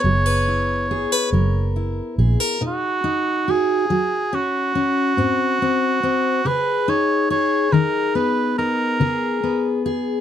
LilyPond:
<<
  \new Staff \with { instrumentName = "Cor anglais" } { \time 6/8 \key b \major \tempo 4. = 47 cis''2 r4 | fis'4 gis'4 fis'4~ | fis'4. b'8 cis''8 cis''8 | ais'8 b'8 ais'4. r8 | }
  \new Staff \with { instrumentName = "Steel-string acoustic guitar" } { \time 6/8 \key b \major << { <b gis'>16 b'16 e'8 gis'16 b'16 ais'8 e'8 gis'16 ais'16 | dis'8 dis'8 fis'8 fis'8 cis'8 cis'8 | bis8 bis8 bis8 gis'8 dis'8 gis'8 | dis'8 b8 dis'8 gis'8 b8 gis'8 | } \\ { fis4 r8 fis4 r8 | b,4 r8 fis4 r8 | gis,4 r8 cis4 r8 | dis4 r8 cis4 r8 | } >> }
  \new Staff \with { instrumentName = "Fingered electric bass" } { \clef bass \time 6/8 \key b \major fis,,4. fis,,4 ais,,16 r16 | r2. | r2. | r2. | }
>>